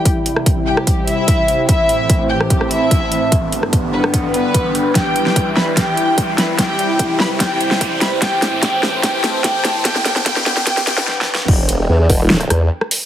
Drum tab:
CC |------------------------------------------------|------------------------------------------------|------------------------------------------------|------------------------------------------------|
HH |x-----x-----x-----------x-----x-----x-----x-----|x-----x-----x-----------x-----x-----x-----x-----|x-----x-----x-----------x-----x-----x-----x-----|x-----x-----x-----------x-----x-----x-----x-----|
SD |---------r-----------r--------------------------|---------------------r-----r--------------------|---------r-----------r--------------------------|o--------o--------o-----o-----------------o-----|
BD |o-----------o-----------o-----------o-----------|o-----------o-----------o-----------o-----------|o-----------o-----------o-----------o-----------|o-----------o-----------o-----------o-----------|

CC |------------------------------------------------|------------------------------------------------|------------------------------------------------|x-----------------------------------------------|
HH |x-----x-----x-----------x-----x-----x-----x-----|x-----x-----x-----------x-----x-----x-----x-----|x-----x-----x-----------x--x--x-----------------|------x-----------o--------x--x-----------o-----|
SD |o-----------------o-----o--------o--------o-----|o-----o-----o-----o-----o-----o-----o-----o-----|o--o--o--o--o--o--o--o--o--o--o--o--o---o---o---|------------------------o--r--r--------r--------|
BD |o-----------o-----------o-----------o-----------|o-----------o-----------o-----------o-----------|o-----------o-----------o-----------------------|o-----------------o-----------------------------|